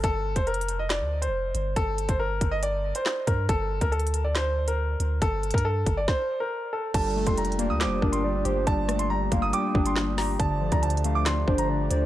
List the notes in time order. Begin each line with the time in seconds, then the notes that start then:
0.04 G1 A4, kick, closed hi-hat
0.36 F1 C5, kick, closed hi-hat
0.47 A#4, closed hi-hat
0.54 closed hi-hat
0.61 closed hi-hat
0.68 closed hi-hat
0.79 D#5
0.90 D5, snare, clap, closed hi-hat
1.01 D2
1.22 C5, closed hi-hat
1.28 F1
1.55 G1, closed hi-hat
1.76 G1 A4, kick, closed hi-hat
1.98 closed hi-hat
2.09 G1 C5, kick, closed hi-hat
2.20 A#4
2.41 G1, kick, closed hi-hat
2.51 D#5
2.63 D5, closed hi-hat
2.95 C5, closed hi-hat
3.06 snare, clap
3.27 G2 A#4, kick, closed hi-hat
3.49 G1 A4, kick, closed hi-hat
3.81 D2 A#4, kick, closed hi-hat
3.92 A4, closed hi-hat
4.00 closed hi-hat
4.07 closed hi-hat
4.14 closed hi-hat
4.24 D5
4.35 C5, snare, clap, closed hi-hat
4.68 A#4, closed hi-hat
5.00 D2, closed hi-hat
5.22 G1 A4, kick, closed hi-hat
5.43 closed hi-hat
5.51 G2 A#4, kick, closed hi-hat
5.58 closed hi-hat
5.65 A4
5.86 G1, kick, closed hi-hat
5.97 D5
6.08 C5, kick, snare
6.40 A#4
6.73 A4
6.94 G1 A#2 G3 D4 G4 A4 A5, kick, closed hi-hat, crash
7.16 A3
7.27 F1 C6, kick, closed hi-hat
7.37 G3 A#5, closed hi-hat
7.45 closed hi-hat
7.52 closed hi-hat
7.59 A#3 D5, closed hi-hat
7.70 D2 D#6
7.80 G3 C5 D6, snare, clap, closed hi-hat
7.86 F1
8.02 G1 D4 A#4, kick
8.12 C6, closed hi-hat
8.24 G3 D5
8.45 G1 G4 C5, closed hi-hat
8.67 G1 G3 D5 A5, kick, closed hi-hat
8.88 A3, cross-stick, closed hi-hat
8.99 C6, closed hi-hat
9.10 G3 A#5
9.32 G1 A#3 F5, kick, closed hi-hat
9.42 D#6
9.53 G3 G5 D6, closed hi-hat
9.75 G1 D4, kick
9.86 C6, closed hi-hat
9.96 G3, snare, clap
10.18 G4 A#5, snare, open hi-hat
10.40 G1 D3 F3 A3 D4 D5 A5, kick, closed hi-hat
10.61 F3
10.72 D2 A#5, kick, closed hi-hat
10.83 D3 A5, closed hi-hat
10.90 closed hi-hat
10.97 closed hi-hat
11.04 A3 F5, closed hi-hat
11.15 D6
11.26 D3 D5 C6, snare, clap, closed hi-hat
11.47 G1 D4 C5, kick
11.58 A#5, closed hi-hat
11.69 D3 D5
11.91 D2 C5 D5, closed hi-hat